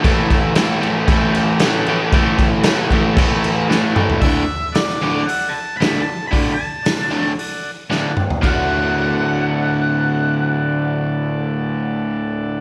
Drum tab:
CC |x-x-x-x-x-x-x-x-|x-x-x-x-x-x-----|----------------|----------------|
HH |----------------|----------------|o---o---o---o---|o---o---o-------|
SD |----o-------o---|----o-------o---|----oo------o---|----oo------o---|
T2 |----------------|--------------o-|----------------|--------------o-|
FT |----------------|---------------o|----------------|---------------o|
BD |o-o-----o-------|o-o---o-o-------|o---------------|o---------------|

CC |x---------------|----------------|
HH |----------------|----------------|
SD |----------------|----------------|
T2 |----------------|----------------|
FT |----------------|----------------|
BD |o---------------|----------------|